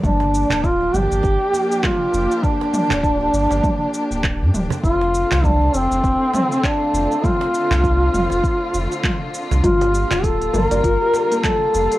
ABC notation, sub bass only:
X:1
M:4/4
L:1/16
Q:"Swing 16ths" 1/4=100
K:Gm
V:1 name="Sub bass" clef=bass
G,,,3 D,,,3 G,,, G,,, G,,, z4 z F,,, z | z3 D,,,3 G,,, G,,, z3 D,,,2 G,, D,,, z | F,,,3 C,,3 F,,, F,,, F,,, z4 z F,,, z | z3 C,,3 F,,, F,,, z2 F,,, z4 C,, |
G,,,3 D,,,3 G,,, G,,, G,,, z4 z F,,, z |]